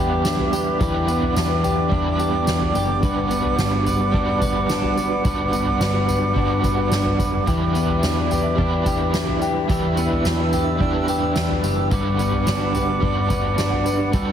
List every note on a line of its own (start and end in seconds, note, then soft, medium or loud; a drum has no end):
0.00 0.76 E2 loud
0.00 0.79 E3 medium
0.00 0.80 G3 medium
0.00 0.81 B3 medium
0.00 1.07 B3 medium
0.00 0.24 D4 medium
0.00 0.81 D4 medium
0.00 0.52 G4 medium
0.00 0.82 B4 medium
0.00 2.73 B4 medium
0.00 11.62 D5 medium
0.00 2.72 E5 medium
0.00 9.41 D6 medium
0.25 1.36 D4 medium
0.25 snare loud
0.25 tambourine medium
0.39 floor tom medium
0.53 0.81 G4 medium
0.53 tambourine medium
0.80 1.33 E2 loud
0.80 1.08 E3 medium
0.80 3.03 E3 medium
0.80 1.08 G3 medium
0.80 1.09 B3 medium
0.80 1.08 D4 medium
0.80 1.64 G4 medium
0.80 1.06 B4 medium
0.80 kick loud
0.80 floor tom loud
0.80 tambourine medium
1.07 3.31 B3 medium
1.07 1.95 D4 medium
1.07 1.97 B4 medium
1.07 tambourine medium
1.11 1.92 B3 medium
1.23 floor tom medium
1.36 1.89 E2 medium
1.36 1.91 D4 medium
1.36 snare loud
1.36 tambourine medium
1.64 2.19 G4 medium
1.64 floor tom medium
1.64 tambourine medium
1.89 2.44 E2 loud
1.89 3.03 G3 medium
1.89 3.04 B3 medium
1.89 2.47 D4 medium
1.89 kick medium
1.89 floor tom medium
1.95 3.04 D4 medium
1.95 3.05 B4 medium
2.19 2.75 G4 medium
2.19 tambourine medium
2.47 2.74 E2 loud
2.47 3.58 D4 medium
2.47 snare loud
2.47 tambourine medium
2.61 floor tom medium
2.75 3.01 F#1 medium
2.75 3.03 G4 medium
2.75 tambourine medium
3.02 3.56 G1 medium
3.02 3.30 G2 medium
3.02 5.24 G2 medium
3.02 3.31 D3 medium
3.02 3.31 G3 medium
3.02 3.31 D4 medium
3.02 3.30 F#4 medium
3.02 3.86 B4 medium
3.02 7.44 B4 medium
3.02 3.28 B4 medium
3.02 7.44 F#5 medium
3.02 kick loud
3.02 floor tom loud
3.02 tambourine medium
3.29 5.52 B3 medium
3.29 4.14 D4 medium
3.29 4.14 F#4 soft
3.29 4.20 B4 medium
3.29 tambourine medium
3.34 4.11 G3 soft
3.45 floor tom medium
3.58 4.11 G1 loud
3.58 4.14 D4 medium
3.58 snare loud
3.58 tambourine medium
3.86 4.41 B4 medium
3.86 floor tom medium
3.86 tambourine medium
4.11 5.21 G1 loud
4.11 5.25 G3 medium
4.11 4.69 D4 medium
4.11 5.25 D4 medium
4.11 kick loud
4.18 5.25 F#4 medium
4.18 5.26 B4 medium
4.42 4.97 B4 medium
4.42 kick medium
4.42 tambourine medium
4.69 5.80 D4 medium
4.69 snare loud
4.69 tambourine medium
4.83 floor tom medium
4.97 5.25 B4 medium
4.97 tambourine medium
5.24 5.78 G1 loud
5.24 5.52 G2 medium
5.24 7.47 G2 medium
5.24 5.53 D3 medium
5.24 5.53 G3 medium
5.24 5.53 D4 medium
5.24 5.52 F#4 medium
5.24 6.08 B4 medium
5.24 5.51 B4 medium
5.24 kick loud
5.24 floor tom loud
5.24 tambourine medium
5.52 7.75 B3 medium
5.52 6.37 D4 soft
5.52 6.36 F#4 medium
5.52 6.42 B4 medium
5.52 tambourine medium
5.56 6.33 G3 soft
5.67 floor tom medium
5.80 6.33 G1 medium
5.80 6.36 D4 medium
5.80 snare loud
5.80 tambourine medium
6.08 6.64 B4 medium
6.08 floor tom medium
6.08 tambourine medium
6.34 6.89 G1 medium
6.34 7.47 G3 medium
6.34 6.92 D4 medium
6.34 7.48 D4 medium
6.34 kick medium
6.40 7.48 F#4 medium
6.40 7.49 B4 medium
6.64 7.19 B4 medium
6.64 kick medium
6.64 tambourine medium
6.92 7.18 G1 medium
6.92 8.02 D4 medium
6.92 snare loud
6.92 tambourine medium
7.06 floor tom medium
7.19 7.46 F#1 medium
7.19 7.47 B4 medium
7.19 kick medium
7.19 tambourine medium
7.46 8.00 E2 loud
7.46 7.75 E3 medium
7.46 9.68 E3 medium
7.46 7.75 G3 medium
7.46 7.75 D4 medium
7.46 7.75 E4 medium
7.46 8.30 G4 medium
7.46 14.32 B4 medium
7.46 7.72 B4 medium
7.46 11.61 E5 medium
7.46 kick loud
7.46 floor tom loud
7.46 tambourine medium
7.74 9.97 B3 medium
7.74 8.59 E4 medium
7.74 8.64 B4 medium
7.74 tambourine medium
7.78 8.59 D4 soft
7.89 floor tom medium
8.03 8.56 E2 medium
8.03 8.57 D4 medium
8.03 snare loud
8.03 tambourine medium
8.31 8.86 G4 medium
8.31 floor tom medium
8.31 tambourine medium
8.55 9.65 E2 loud
8.55 9.69 G3 medium
8.55 9.13 D4 medium
8.55 9.69 D4 medium
8.55 kick medium
8.62 9.69 E4 medium
8.62 9.71 B4 medium
8.86 9.41 G4 medium
8.86 kick medium
8.86 tambourine medium
9.14 10.25 D4 medium
9.14 snare loud
9.14 tambourine medium
9.28 floor tom medium
9.42 9.70 G4 medium
9.42 tambourine medium
9.68 10.22 E2 loud
9.68 9.96 E3 medium
9.68 11.92 E3 medium
9.68 9.97 G3 medium
9.68 9.97 D4 medium
9.68 9.97 E4 medium
9.68 10.53 G4 medium
9.68 9.94 B4 medium
9.68 11.90 E6 medium
9.68 kick loud
9.68 floor tom medium
9.68 tambourine medium
9.96 12.19 B3 medium
9.96 10.81 E4 medium
9.96 10.86 B4 medium
9.96 tambourine medium
10.00 10.81 D4 soft
10.11 floor tom medium
10.25 10.78 E2 medium
10.25 10.80 D4 medium
10.25 snare loud
10.25 tambourine medium
10.53 11.08 G4 medium
10.53 floor tom medium
10.53 tambourine medium
10.77 11.33 E2 loud
10.77 11.92 G3 medium
10.77 11.36 D4 medium
10.77 11.92 D4 medium
10.77 kick medium
10.84 11.93 E4 medium
10.84 11.93 B4 medium
11.08 11.63 G4 medium
11.08 tambourine medium
11.36 11.62 E2 medium
11.36 12.47 D4 medium
11.36 snare loud
11.36 tambourine medium
11.50 floor tom medium
11.64 11.90 F#1 medium
11.64 11.92 G4 medium
11.64 tambourine medium
11.91 12.44 G1 loud
11.91 12.19 G2 medium
11.91 14.12 G2 medium
11.91 12.19 D3 medium
11.91 12.20 G3 medium
11.91 12.20 D4 medium
11.91 12.19 F#4 medium
11.91 12.75 B4 medium
11.91 12.17 B4 medium
11.91 14.32 D5 medium
11.91 14.32 F#5 medium
11.91 14.12 D6 medium
11.91 kick loud
11.91 floor tom loud
11.91 tambourine medium
12.18 14.32 B3 medium
12.18 13.03 D4 soft
12.18 13.03 F#4 medium
12.18 13.09 B4 medium
12.18 tambourine medium
12.22 13.00 G3 soft
12.33 floor tom medium
12.47 13.00 G1 loud
12.47 13.02 D4 medium
12.47 snare loud
12.47 tambourine medium
12.75 13.30 B4 medium
12.75 floor tom medium
12.75 tambourine medium
13.00 14.10 G1 medium
13.00 14.13 G3 medium
13.00 13.58 D4 medium
13.00 14.14 D4 medium
13.00 kick medium
13.07 14.14 F#4 medium
13.07 14.15 B4 medium
13.30 13.85 B4 medium
13.30 kick loud
13.30 tambourine medium
13.58 14.32 D4 medium
13.58 snare loud
13.58 tambourine medium
13.72 floor tom medium
13.86 14.14 B4 medium
13.86 tambourine medium
14.12 14.32 G1 loud
14.12 14.32 G2 medium
14.12 14.32 D3 medium
14.12 14.32 G3 medium
14.12 14.32 D4 medium
14.12 14.32 F#4 medium
14.12 14.32 B4 medium
14.12 14.32 E6 medium
14.12 kick loud
14.12 floor tom loud
14.12 tambourine medium